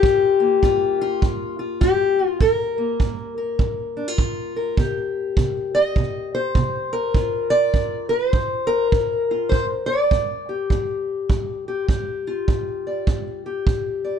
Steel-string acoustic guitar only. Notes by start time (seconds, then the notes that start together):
Already playing: G4
0.03 G2 F4
0.40 A#3
0.63 G2 F4
1.01 F4
1.22 G2
1.59 F4
1.81 G2 G4
2.19 F4
2.27 F4
2.41 G2 A#4
2.78 A#3
3.00 G2
3.38 A#4
3.60 G2
3.97 D4
4.08 F4
4.19 G2
4.56 A#4
4.78 C3 G4
5.38 C3
5.75 D#5
5.98 C3
6.35 C5
6.57 C3
6.93 A#4
7.16 G2 F4
7.50 D5
7.75 G2
8.09 B4
8.29 C5
8.35 G2
8.67 A#4
8.88 B4
8.93 G2
9.01 A#4
9.31 F4
9.49 G2 C5
9.86 D5
10.12 G2
10.49 G4
10.72 G2
11.31 G2
11.68 G4
11.77 C5
11.89 G2 G4
12.27 F4
12.48 G2
12.87 D5
13.09 G2
13.46 G4
13.67 G2
14.04 D5